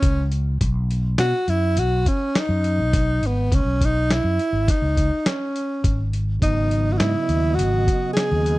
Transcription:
Already playing: tenor saxophone C#4
0.02 fretless electric bass C#2, kick, closed hi-hat
0.32 closed hi-hat
0.61 fretless electric bass B1, kick, closed hi-hat
0.91 closed hi-hat
1.18 fretless electric bass B2, tenor saxophone F#4, snare, closed hi-hat
1.48 fretless electric bass F#2, tenor saxophone E4, closed hi-hat
1.77 fretless electric bass B1, tenor saxophone F#4, closed hi-hat
2.06 tenor saxophone C#4, kick, closed hi-hat
2.35 tenor saxophone D#4, snare, closed hi-hat
2.49 fretless electric bass F#2
2.64 closed hi-hat
2.78 fretless electric bass B1
2.93 kick, snare, closed hi-hat
3.21 fretless electric bass G#1, closed hi-hat
3.27 tenor saxophone B3
3.51 fretless electric bass C#2, tenor saxophone C#4, kick, closed hi-hat
3.65 fretless electric bass B1
3.81 kick, closed hi-hat
3.85 tenor saxophone D#4
4.11 tenor saxophone E4, snare, closed hi-hat
4.24 fretless electric bass F#2
4.39 closed hi-hat
4.53 fretless electric bass G#1
4.68 tenor saxophone D#4, kick, snare, closed hi-hat
4.82 fretless electric bass C#2
4.97 kick, closed hi-hat
5.26 tenor saxophone C#4, snare, closed hi-hat
5.56 closed hi-hat
5.84 fretless electric bass G#1, kick, closed hi-hat
6.13 closed hi-hat
6.40 fretless electric bass G#1, tonewheel organ C#3 F#3 B3 D#5, tenor saxophone D#4, kick, closed hi-hat
6.71 closed hi-hat
6.92 tenor saxophone F#4
6.97 fretless electric bass G#2, tenor saxophone E4, snare, closed hi-hat
7.29 fretless electric bass D#2, closed hi-hat
7.55 fretless electric bass G#1, tenor saxophone F#4
7.59 closed hi-hat
7.87 kick, closed hi-hat
8.13 tenor saxophone G#4, snare, closed hi-hat
8.32 fretless electric bass D#2
8.46 closed hi-hat

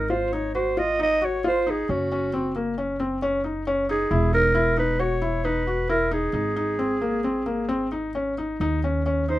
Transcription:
Already playing: upright bass G#1, clarinet A#4
0.10 felt piano F4, clarinet C5
0.33 felt piano D#4, clarinet C#5
0.55 felt piano F#4, clarinet C5
0.77 felt piano F4, clarinet D#5
0.99 felt piano D#4, clarinet D#5
1.22 felt piano F#4, clarinet C#5
1.44 felt piano F4, clarinet C5
1.67 felt piano D#4, clarinet G#4
1.89 upright bass F#1, felt piano C#4, clarinet F#4
2.12 felt piano C#4
2.33 felt piano C4
2.56 felt piano A#3
2.78 felt piano C#4
3.00 felt piano C4
3.22 felt piano C#4
3.44 felt piano D#4
3.67 felt piano C#4
3.89 felt piano D#4, clarinet G#4
4.11 upright bass E1, felt piano E4
4.33 felt piano D#4, clarinet A#4
4.55 felt piano E4
4.77 felt piano D#4, clarinet B4
4.99 felt piano F#4, clarinet C#5
5.22 felt piano E4
5.45 felt piano D#4, clarinet B4
5.67 felt piano F#4
5.89 felt piano E4, clarinet A#4
6.11 felt piano D#4, clarinet G#4
6.33 upright bass G#1, felt piano D#4
6.56 felt piano D#4
6.79 felt piano C4
7.01 felt piano A#3
7.24 felt piano C4
7.46 felt piano A#3
7.69 felt piano C4
7.92 felt piano D#4
8.15 felt piano C#4
8.38 felt piano D#4
8.60 upright bass D#2, felt piano D#4
8.84 felt piano C#4
9.06 felt piano C#4
9.29 felt piano D#4, clarinet C5

